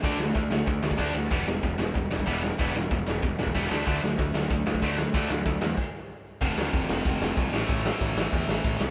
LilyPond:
<<
  \new Staff \with { instrumentName = "Overdriven electric guitar" } { \clef bass \time 4/4 \key d \dorian \tempo 4 = 188 <d a d'>8 <d a>8 <d a>8 <d a>8 <d a>8 <d a>8 <d a d'>8 <d a>8 | <e g b>8 <e g>8 <e g>8 <e g>8 <e g>8 <e g>8 <e g b>8 <e g>8 | <e g b>8 <e g>8 <e g>8 <e g>8 <e g>8 <e g>8 <e g b>8 <d fis a>8 | <d fis a>8 <d fis>8 <d fis>8 <d fis>8 <d fis>8 <d fis>8 <d fis a>8 <d fis>8 |
<d fis a>8 <d fis>8 <d fis>8 <d fis>8 r2 | r1 | r1 | }
  \new Staff \with { instrumentName = "Distorted electric guitar" } { \clef bass \time 4/4 \key d \dorian <d a d'>8 <d a>8 <d a>8 <d a>8 <d a>8 <d a>8 <d a d'>8 <d a>8 | <e, b, e>8 <e, b,>8 <e, b,>8 <e, b,>8 <e, b,>8 <e, b,>8 <e, b, e>8 <e, b,>8 | <e, b, e>8 <e, b,>8 <e, b,>8 <e, b,>8 <e, b,>8 <e, b,>8 <e, b, e>8 <d a d'>8 | <d a d'>8 <d a>8 <d a>8 <d a>8 <d a>8 <d a>8 <d a d'>8 <d a>8 |
<d a d'>8 <d a>8 <d a>8 <d a>8 r2 | <f, c f>2.~ <f, c f>8 <a, e a>8~ | <a, e a>2.~ <a, e a>8 r8 | }
  \new Staff \with { instrumentName = "Picked electric bass" } { \clef bass \time 4/4 \key d \dorian d,8 d,8 d,8 d,8 d,8 d,8 d,8 d,8 | e,,8 e,,8 e,,8 e,,8 e,,8 e,,8 e,,4 | e,,8 e,,8 e,,8 e,,8 e,,8 e,,8 e,,8 d,8 | d,8 d,8 d,8 d,8 d,8 d,8 d,4 |
d,8 d,8 d,8 e,8 r2 | f,,8 d,8 f,,8 f,,8 f,,8 f,,8 c,8 a,,8 | a,,4 a,,8 a,,8 e,8 a,,8 a,,8 c,8 | }
  \new DrumStaff \with { instrumentName = "Drums" } \drummode { \time 4/4 <hho bd>8 sn8 <hho bd>8 sn8 <hho bd>8 sn16 bd16 <bd sn>8 sn8 | <hho bd>8 sn8 <hho bd>8 sn8 <hho bd>8 sn16 bd16 <hho bd>8 sn8 | <hho bd>8 sn8 <hho bd>8 sn8 <hho bd>8 sn16 bd16 <hho bd>8 sn8 | <hho bd>8 sn8 <hho bd>8 sn8 <hho bd>8 sn16 bd16 <hho bd>8 sn8 |
<hho bd>8 sn8 <hho bd>8 sn8 <cymc bd>4 r4 | <cymc bd>8 sn8 <bd cymr>8 sn8 <bd cymr>8 sn8 <bd cymr>8 sn8 | <bd cymr>8 sn8 <bd cymr>8 sn8 <bd cymr>8 sn8 <bd cymr>8 sn8 | }
>>